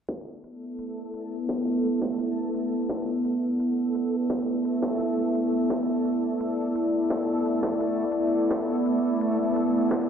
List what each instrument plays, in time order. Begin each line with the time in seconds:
0.09 synth texture A3 A4, synth drone B3, kick, closed hi-hat
0.22 synth drone E4 D5
0.39 synth drone A4
0.44 closed hi-hat
0.79 closed hi-hat
1.14 closed hi-hat
1.49 kick, closed hi-hat
1.84 closed hi-hat
2.02 kick
2.20 closed hi-hat
2.55 closed hi-hat
2.89 kick, closed hi-hat
3.25 closed hi-hat
3.60 closed hi-hat
3.72 synth drone B4
3.95 closed hi-hat
4.30 kick, closed hi-hat
4.65 closed hi-hat
4.82 kick
5.00 closed hi-hat
5.35 closed hi-hat
5.70 kick, closed hi-hat
6.05 closed hi-hat
6.20 synth drone A4
6.41 closed hi-hat
6.76 closed hi-hat
7.10 kick, closed hi-hat
7.46 closed hi-hat
7.63 kick
7.81 closed hi-hat
8.12 closed hi-hat
8.51 kick, closed hi-hat
8.86 closed hi-hat
9.21 closed hi-hat
9.28 synth drone B4
9.56 closed hi-hat
9.91 kick, closed hi-hat